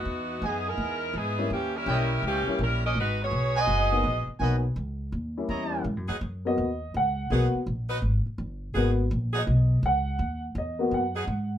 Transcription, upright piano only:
X:1
M:4/4
L:1/8
Q:"Swing" 1/4=166
K:G#m
V:1 name="Upright piano"
z6 z [=G,A,CE] | z2 [=G,A,CE] z2 [G,A,CE] z2 | z4 z [F,A,B,D] z2 | [F,A,B,D] z4 [=G,A,CE]3 |
z3 d3 f2- | f z6 z | z3 d3 f2- | f z d2 f3 z |]
V:2 name="Upright piano"
z8 | z8 | z8 | z8 |
z3 [A,B,F] z4 | [A,B,F] z6 z | [A,B,F] z6 z | z3 [A,B,F] z4 |]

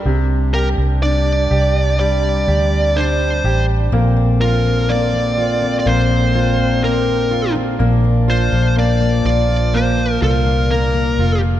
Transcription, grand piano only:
X:1
M:4/4
L:1/8
Q:1/4=62
K:Bb
V:1 name="Grand piano"
C, G D G G, G D G | B, F B, F B, F B, F | B, F B, F B, F B, F |]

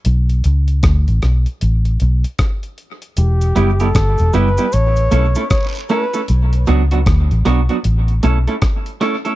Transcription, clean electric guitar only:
X:1
M:4/4
L:1/16
Q:"Swing 16ths" 1/4=77
K:Amix
V:1 name="Clean electric guitar"
z16 | z2 [G,B,EG] [G,B,EG] z2 [G,B,EG] [G,B,EG] z2 [A,CEA] [A,CEA] z2 [A,CEA] [A,CEA] | z2 [F,B,DF] [F,B,DF] z2 [F,B,DF] [F,B,DF] z2 [A,CEA] [A,CEA] z2 [A,CEA] [A,CEA] |]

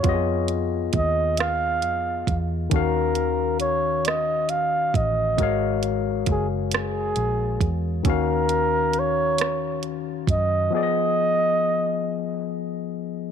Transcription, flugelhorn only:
X:1
M:6/8
L:1/8
Q:3/8=45
K:Ebm
V:1 name="Flugelhorn"
d z e f2 z | B2 d e f e- | e z A A2 z | B2 d2 z e |
e4 z2 |]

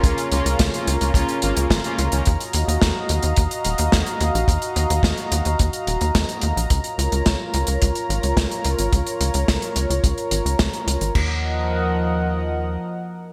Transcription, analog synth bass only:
X:1
M:4/4
L:1/16
Q:1/4=108
K:Ebm
V:1 name="Analog synth bass" clef=bass
D,, z D,, D,, D,, z D,, D,, D,, z A,,, D,, A,,, z D,, D,, | E,, z E,, E,, E,, z E,, E,, E,, z E,,, E,, E,, z E,, B,,, | E,, z E,, E,, E,, z E,, E,, E,, z E,,, E,, E,, z E,, B,,, | D,, z D,, D,, D,, z D,, D,, D,, z A,,, D,, D,, z D,, A,,, |
D,, z D,, D,, D,, z D,, D,, D,, z A,,, D,, D,, z D,, A,,, | E,,12 z4 |]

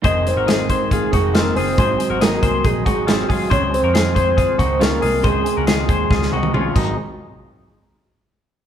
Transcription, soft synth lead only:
X:1
M:4/4
L:1/8
Q:1/4=138
K:Fphr
V:1 name="Soft synth lead"
e c2 c A2 B c- | c2 B2 A3 z | d c2 c3 B2 | A6 z2 |
z8 |]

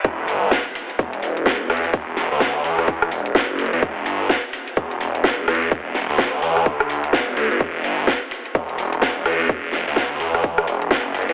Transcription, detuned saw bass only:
X:1
M:4/4
L:1/16
Q:"Swing 16ths" 1/4=127
K:Em
V:1 name="Detuned saw bass" clef=bass
E,,,2 G,,,2 z4 E,,,2 E,,,4 E,,2 | E,,,3 D,,3 E,,4 E,,,3 F,,,2 E,, | E,,,2 G,,,2 z4 E,,,2 E,,,4 E,,2 | E,,,3 D,,3 E,,2 D,,4 E,,,2 D,, G,,, |
E,,,2 G,,,2 z4 E,,,2 E,,,4 E,,2 | E,,,3 D,,3 E,,4 E,,,3 F,,,2 E,, |]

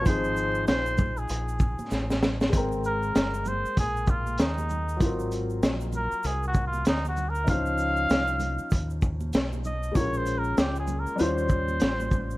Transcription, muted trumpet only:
X:1
M:4/4
L:1/16
Q:"Swing 16ths" 1/4=97
K:Ab
V:1 name="Muted trumpet"
c4 c3 A6- A z2 | z2 B4 c2 A2 F2 E4- | E2 z4 B2 (3A2 _G2 F2 (3E2 G2 B2 | f8- f2 z4 e2 |
(3d2 c2 B2 (3G2 A2 B2 c8 |]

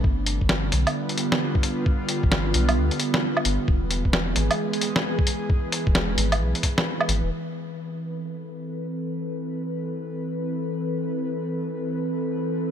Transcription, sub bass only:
X:1
M:4/4
L:1/16
Q:"Swing 16ths" 1/4=132
K:Am
V:1 name="Sub bass" clef=bass
G,,,3 G,,,3 B,,, z8 z | z3 G,,,3 B,,,2 D,, z4 z G,,, z | E,,,3 E,,,3 ^G,,, z8 z | z3 E,,,3 ^G,,,2 B,,, z4 z G,,, E,,, |
z16 | z16 | z16 |]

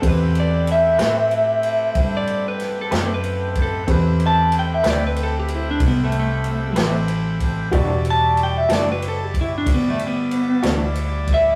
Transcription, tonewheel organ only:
X:1
M:12/8
L:1/8
Q:3/8=62
K:Ador
V:1 name="Tonewheel organ"
[A,CGB]12 | [A,CGB]12 | [G,Ed]12 |]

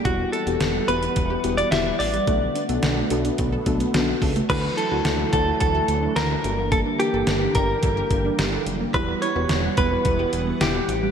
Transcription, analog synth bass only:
X:1
M:4/4
L:1/16
Q:1/4=108
K:D
V:1 name="Analog synth bass" clef=bass
E,,,2 z E,,, E,,,2 E,,,2 E,,,2 E,,,2 E,,,2 A,,,2 | B,,,2 z B,,, B,,,2 B,,,2 B,,,2 B,,,2 B,,,2 C,,2 | D,,2 z D,, D,,2 D,,2 D,,2 D,,2 D,,2 G,,,2- | G,,,2 z G,,, G,,,2 G,,,2 G,,,2 G,,,2 G,,,2 F,,,2 |
E,,,2 z E,,, E,,,2 E,,,2 E,,,2 E,,,2 E,,,2 A,,,2 |]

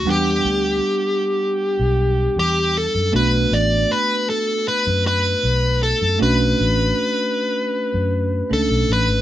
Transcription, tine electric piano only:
X:1
M:4/4
L:1/8
Q:1/4=78
K:Bm
V:1 name="Tine electric piano"
[G,B,Df]8 | [A,B,DF]8 | [A,CDF]6 [A,CDA]2 |]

